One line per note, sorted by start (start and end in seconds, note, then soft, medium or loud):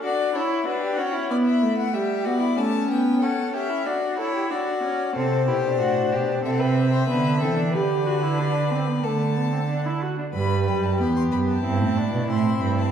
0.03 0.34 D4 medium
0.03 0.34 F#4 medium
0.03 0.37 D5 medium
0.34 0.41 D4 medium
0.34 0.66 E4 medium
0.34 0.66 C#5 medium
0.50 0.67 E4 medium
0.65 0.99 D4 medium
0.65 0.81 F#4 medium
0.65 1.00 B4 medium
0.81 0.98 G4 medium
0.97 1.31 C#4 medium
0.97 1.14 F#4 medium
0.97 1.30 C#5 medium
1.13 1.92 E4 medium
1.30 1.64 B3 medium
1.30 1.36 D5 medium
1.46 1.77 E5 medium
1.62 1.95 A3 medium
1.77 1.95 F#5 medium
1.93 2.27 G3 medium
1.93 2.26 G4 medium
1.93 2.27 E5 medium
2.25 2.58 B3 medium
2.25 2.42 F#4 medium
2.25 2.59 D5 medium
2.40 2.58 E4 medium
2.57 2.89 A3 medium
2.57 3.21 C#4 medium
2.57 2.90 A5 medium
2.90 3.24 B3 medium
2.90 3.24 G5 medium
3.21 3.53 C#4 medium
3.21 3.55 A4 medium
3.21 3.54 F#5 medium
3.54 3.87 C#4 medium
3.54 3.71 G4 medium
3.54 3.88 E5 medium
3.70 3.85 E4 medium
3.86 4.18 D4 medium
3.86 4.19 F#4 medium
3.86 4.18 D5 medium
4.18 4.52 E4 medium
4.18 4.34 A4 medium
4.18 4.53 C#5 medium
4.34 4.49 G4 medium
4.50 4.82 D4 medium
4.50 5.13 F#4 medium
4.50 5.15 D5 medium
4.83 5.14 C#4 medium
5.15 5.49 C3 medium
5.15 5.45 C4 medium
5.15 5.45 A4 medium
5.15 6.41 C5 medium
5.47 5.82 B2 medium
5.47 5.54 E4 medium
5.47 5.79 G4 medium
5.64 6.43 D4 medium
5.80 6.14 A2 medium
5.80 6.14 F#4 medium
6.12 6.44 B2 medium
6.12 6.44 G4 medium
6.44 7.08 C3 medium
6.44 7.07 C4 medium
6.44 6.61 A4 medium
6.44 6.53 E5 medium
6.52 6.60 F#5 medium
6.59 6.91 B4 medium
6.59 7.74 E5 medium
6.92 7.07 C5 medium
7.08 7.43 D3 medium
7.08 7.40 B3 medium
7.08 7.40 B4 medium
7.40 7.76 E3 medium
7.40 7.57 C4 medium
7.40 7.73 A4 medium
7.57 7.75 D4 medium
7.73 9.03 D3 medium
7.73 8.07 G4 medium
7.73 9.05 B4 medium
7.73 9.05 D5 medium
8.06 8.24 F#4 medium
8.22 8.41 E4 medium
8.39 8.72 D4 medium
8.71 8.89 C4 medium
8.87 9.03 B3 soft
9.04 10.00 D3 medium
9.04 9.38 A3 medium
9.04 10.02 A4 medium
9.04 10.02 A5 medium
9.36 9.52 B3 soft
9.52 9.59 C4 medium
9.69 9.87 D4 medium
9.85 10.03 E4 medium
10.02 10.18 F#4 medium
10.18 10.25 D4 soft
10.34 10.69 G2 medium
10.34 11.01 G3 medium
10.34 10.95 B4 medium
10.34 10.65 B5 medium
10.67 11.02 F#2 medium
10.67 10.85 G5 medium
10.84 11.00 A5 medium
10.99 11.32 E2 medium
10.99 11.64 B3 medium
10.99 11.63 G4 medium
10.99 11.15 B5 medium
11.16 11.22 C6 medium
11.32 11.64 F#2 medium
11.32 11.38 B5 medium
11.49 12.28 A5 medium
11.64 11.83 G2 medium
11.64 11.99 C4 medium
11.64 12.91 E4 medium
11.81 12.13 A2 medium
11.97 12.30 D4 medium
12.13 12.29 B2 medium
12.29 12.61 A2 medium
12.29 12.91 C4 medium
12.29 12.62 C6 medium
12.61 12.91 G2 medium
12.61 12.77 B5 medium
12.77 12.91 A5 medium